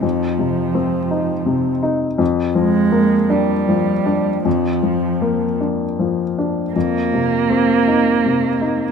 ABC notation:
X:1
M:6/8
L:1/8
Q:3/8=54
K:Fdor
V:1 name="Upright piano"
[F,,E] C, C E C, E | F,, F, B, D F, D | F,, F, B, D F, D | F,, C, C E C, E |]
V:2 name="Cello" clef=bass
F,4- F, z | z A,2 G,3 | F,3 z3 | B,6 |]